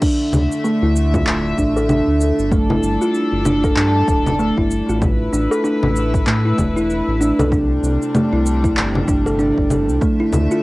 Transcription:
0.02 string section D3 A3 E5, kalimba D4, kick, crash, cabasa
0.33 analog synth bass D2, low conga, cabasa
0.52 cabasa
0.64 kalimba A3, cabasa
0.82 analog synth bass D2, kalimba E4
0.96 cabasa
1.14 kalimba F4, kick, low conga, cabasa
1.27 analog synth bass D1, clap, cabasa
1.58 analog synth bass A1, kalimba D4, kick, cabasa
1.76 kalimba A4, cabasa
1.89 kalimba D4, low conga, cabasa
2.08 analog synth bass D2
2.21 cabasa
2.39 analog synth bass G1, cabasa
2.52 string section G3 D4 A4, kalimba A3, kick, cabasa
2.70 kalimba E4, low conga
2.83 analog synth bass G1, cabasa
3.01 kalimba F4, cabasa
3.14 cabasa
3.32 analog synth bass G1
3.45 kalimba D4, low conga, cabasa
3.64 kalimba A4, kick, cabasa
3.76 analog synth bass G2, kalimba D4, clap, cabasa
4.08 analog synth bass D1, kick, cabasa
4.26 low conga, cabasa
4.39 kalimba A3, cabasa
4.58 analog synth bass G1, kalimba E4, kick
4.71 cabasa
4.89 analog synth bass A1, kalimba F4, cabasa
5.02 string section A3 E4 B4, kick, low conga, cabasa
5.33 analog synth bass A1, kalimba D4, cabasa
5.51 kalimba A4, cabasa
5.64 kalimba D4, cabasa
5.83 analog synth bass A1, low conga
5.96 cabasa
6.14 kick, cabasa
6.27 analog synth bass A2, kalimba A3, clap, cabasa
6.45 kalimba E4
6.58 analog synth bass E1, kick, low conga, cabasa
6.77 kalimba E4, cabasa
6.90 cabasa
7.08 analog synth bass A1
7.21 kalimba D4, cabasa
7.39 analog synth bass C2, kalimba A4, low conga, cabasa
7.52 string section C3 G3 D4, kalimba D4, kick, cabasa
7.83 analog synth bass C2, cabasa
8.02 cabasa
8.15 kalimba A3, low conga, cabasa
8.33 analog synth bass C2, kalimba E4
8.46 cabasa
8.64 kalimba E4, kick, cabasa
8.77 analog synth bass G1, clap, cabasa
8.95 low conga
9.08 analog synth bass G1, kalimba D4, kick, cabasa
9.26 kalimba A4, cabasa
9.39 kalimba D4, cabasa
9.58 analog synth bass G1, kick
9.70 low conga, cabasa
9.89 analog synth bass C2, cabasa
10.01 string section D3 A3 E5, kalimba A3, kick, cabasa
10.20 kalimba E4
10.32 analog synth bass D2, low conga, cabasa
10.51 kalimba F4, cabasa

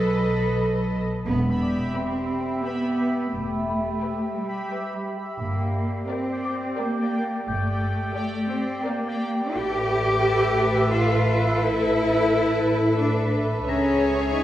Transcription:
Already playing: double bass section B1, cello section F#3, viola section A4, synth texture A4 D#5 B5, violin section B4 D#5
0.23 celesta D#6
1.26 double bass section E1, cello section B3, synth texture G4 E5 B5
1.62 celesta D5 D6
1.94 cello section C4, viola section G4, violin section B4 G5
2.64 cello section B3, viola section G4, violin section B4 G5
3.33 double bass section E1, cello section A3
3.70 celesta B5
4.02 viola section G4, violin section B4 G5
4.36 cello section G3
4.71 viola section G4, violin section B4 G5
5.39 double bass section G1, cello section A#3, synth texture G4 D5 G5
6.08 cello section C4, viola section A#4, violin section D5 G5
6.45 celesta D6
6.78 cello section A#3, viola section A#4, violin section D5 G5
7.47 double bass section G1, cello section A3, celesta G6
8.16 viola section G4, violin section D5 G5
8.50 cello section C4
8.84 cello section A#3, viola section A#4, violin section D5 G5
9.53 double bass section A1, cello section G4, synth texture A4 B4 E5, viola section A4, violin section B4 E5
10.58 celesta B6
10.91 cello section F4
11.61 cello section E4
12.98 cello section D4
13.67 double bass section C#2, cello section C#4, synth texture G#4 C#5 G#5, viola section G#4, violin section C#5 E5, celesta A#5 A#6
14.36 cello section D#4

